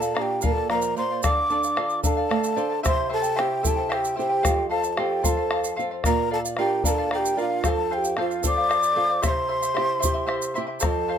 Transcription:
Already playing: A#2 A#3 A4 A5
0.01 D5 F5, shaker
0.14 D4 A#4 D5 F5 A5, bombo rim
0.20 G4 G5
0.41 A#3 A#4 D5 F5 A5, bombo rim, bombo low, shaker
0.47 A#4
0.52 A4 F5
0.57 D5, bombo rim
0.70 F3 A#4 C5 D5 F5 A#5, bombo rim
0.75 A#4
0.82 shaker
0.96 A#3 A#4 C5 D5 F5 C6, shaker
1.10 D5 F5
1.23 D3 A4 D5 F5 D6, bombo rim, bombo low, shaker
1.50 D4 A4 D5 F5, shaker
1.63 F5, shaker
1.76 F4 A4 D5 F5, bombo rim
1.90 shaker
2.03 D4 A4 D5 F5 A#5, bombo low, shaker
2.08 A5
2.17 D5 F5
2.29 A3 A4 D5 F5, bombo rim
2.44 shaker
2.56 D4 A4 C5 D5 F5, bombo rim, shaker
2.70 D5 F5, bombo rim
2.83 C3 E4 G4 C5 E5 G5 C6, bombo rim, bombo low, shaker
2.99 bombo rim
3.09 E4 A4 C5 E5 G5, bombo rim
3.13 A5
3.22 E4 C5 G5, shaker
3.36 C4 E4 G4 A4 C5 E5 G5, bombo rim
3.40 G4
3.63 C4 E4 G4 A4 C5 E5 G5, bombo rim, bombo low, shaker
3.67 A5
3.76 E4 C5 G5, bombo rim
3.89 E4 G4 A4 C5 E5 G5, bombo rim
3.97 G4
4.05 shaker
4.16 C4 E4 G4 A4 C5 E5 G5, shaker
4.22 G4
4.29 E4 C5 G5
4.42 F2 A4 C5 F5, bombo rim, bombo low, shaker
4.58 bombo rim
4.70 A4 C5 F5 A5, bombo rim
4.83 C5 F5, shaker
4.91 A4 A5
4.97 C4 F4 G4 A4 C5 F5 G5, bombo rim
5.23 C4 F4 A4 C5 F5 A#5, bombo rim, bombo low, shaker
5.29 A5
5.37 C5 F5, bombo rim
5.51 A4 C5 F5, bombo rim
5.64 shaker
5.76 C4 F4 A4 C5 F5, shaker
5.91 C5 F5
6.04 A#2 A#4 D5 F5 A#5, bombo rim, bombo low, shaker
6.30 A4 A#4 D5 F5 A5, bombo rim
6.45 D5 F5, shaker
6.57 D4 F4 G4 A#4 D5 F5 G5, bombo rim
6.84 D4 F4 A#4 D5 F5 A5, bombo rim, bombo low, shaker
6.91 A4
6.98 D5 F5, bombo rim
7.11 A4 A#4 D5 F5 G5, bombo rim
7.18 G4
7.25 shaker
7.37 D4 F4 A#4 D5 F5, shaker
7.41 F5
7.50 D5 F5
7.64 F2 A4 C5 F5, bombo rim, bombo low, shaker
7.69 A5
7.91 A4 C5 F5 G5
7.98 G4
8.04 C5 F5, shaker
8.17 C4 F4 A4 C5 F5, bombo rim
8.31 shaker
8.43 C4 F4 A4 C5 D5 F5 D6, bombo rim, bombo low, shaker
8.58 C5 F5, bombo rim
8.69 A4 C5 F5, bombo rim, shaker
8.83 bombo rim, shaker
8.95 C4 F4 A4 C5 F5
9.09 C5 F5
9.22 C3 E4 G4 C5 C#5 E5 C6, bombo rim, bombo low, shaker
9.27 C5 C6
9.37 bombo rim
9.48 E4 C5 E5 C6, bombo rim
9.61 E4 E5 C6, shaker
9.74 C4 E4 G4 C5 E5 C6, bombo rim
9.99 E4 C5 E5 C6, shaker
10.04 C4 E4 G4, bombo rim, bombo low
10.14 E4 E5 C6, bombo rim
10.26 E4 G4 C5 E5 C6, bombo rim
10.42 shaker
10.54 C4 E4 G4 C5 E5 C6, shaker
10.67 E4 E5 C6
10.80 F2 A4 C5 F5 A#5, bombo rim, bombo low, shaker
10.86 A5
11.08 A4 C5 F5, bombo rim

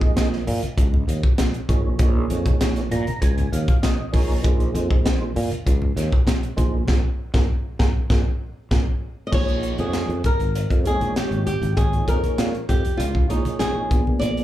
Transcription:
Already playing: F3 A#3 D#4 G#4 D#5
0.01 kick
0.16 A#1, snare, closed hi-hat
0.33 snare
0.47 A#2, open hi-hat, low conga
0.63 muted fretless electric bass stroke, closed hi-hat, high conga
0.77 C#2, kick, closed hi-hat
0.94 high conga, low conga
1.08 D#2, closed hi-hat
1.23 kick, high conga
1.38 A#1, snare, closed hi-hat
1.54 closed hi-hat
1.68 A#1 F3 A#3 D#4 G#4 C#5, kick, closed hi-hat, high conga, low conga
1.98 A#1 F3 A#3 D#4 G#4 C#5, kick, closed hi-hat
2.30 F2, closed hi-hat
2.46 kick, closed hi-hat, high conga
2.61 A#1, snare, closed hi-hat
2.76 snare, closed hi-hat
2.91 A#2 A#5, closed hi-hat, low conga
3.07 muted fretless electric bass stroke, closed hi-hat, high conga
3.22 C#2 G#5, kick, closed hi-hat
3.38 closed hi-hat, high conga, low conga
3.52 D#2 F5, closed hi-hat
3.68 kick, closed hi-hat, high conga
3.82 A#1 D#5, snare, closed hi-hat
4.12 A#1 F3 A#3 D#4 G#4 A#4 C#5, kick, open hi-hat, high conga, low conga
4.43 A#1 F3 A#3 D#4 G#4 C5, kick, closed hi-hat
4.60 closed hi-hat
4.75 F2, closed hi-hat
4.91 kick, high conga
5.05 A#1, snare, closed hi-hat
5.36 A#2, open hi-hat, low conga
5.51 muted fretless electric bass stroke, closed hi-hat, high conga
5.66 C#2, kick, closed hi-hat
5.82 high conga, low conga
5.97 D#2, snare, closed hi-hat
6.12 kick, high conga
6.27 A#1, snare, closed hi-hat
6.43 closed hi-hat
6.57 A#1 F3 A#3 D#4 G#4 C5, kick, closed hi-hat, high conga, low conga
6.87 A#1 F4 G#4 A#4, kick, snare, low conga
7.34 A#1 F4 G#4 A#4, kick, snare, low conga
7.79 A#1 F4 G#4 A#4, kick, snare, low conga
8.10 A#1 F4 G#4 A#4, kick, snare, low conga
8.71 A#1 F4 G#4 A#4, kick, snare, low conga
9.27 D#5
9.32 A#1 F3 A#3 D#4 G#4 C#5, kick, crash
9.49 closed hi-hat
9.63 closed hi-hat
9.78 F2 G#4, closed hi-hat, high conga
9.93 snare, closed hi-hat
10.08 F2, closed hi-hat
10.24 A#4, kick, closed hi-hat, high conga, low conga
10.39 G#1, closed hi-hat
10.55 closed hi-hat
10.70 F2, kick, closed hi-hat, high conga
10.84 F3 G#3 A#3 D#4 G#4 C#5, closed hi-hat
11.01 A#1, closed hi-hat, high conga
11.16 G4, snare, closed hi-hat
11.31 G#1, closed hi-hat
11.46 G4, closed hi-hat, low conga
11.61 G#1, closed hi-hat, high conga
11.76 F3 A#3 D#4 G#4 C#5, kick, closed hi-hat
11.93 closed hi-hat
12.08 F2 A#4, kick, closed hi-hat
12.24 closed hi-hat, high conga
12.38 A#2, snare, closed hi-hat
12.55 closed hi-hat
12.69 F2 G4, kick, closed hi-hat, high conga, low conga
12.85 closed hi-hat
12.97 C#2 F4, closed hi-hat
13.15 kick, high conga
13.29 A#1 F3 A#3 D#4 G#4 C#5, closed hi-hat
13.45 closed hi-hat, high conga
13.59 A#1 G#4, snare, closed hi-hat
13.76 muted fretless electric bass stroke
13.90 A#1 F3 A#3 B3 D4 G#4, kick, closed hi-hat, low conga
14.07 high conga
14.19 A#1 D5, closed hi-hat
14.37 closed hi-hat

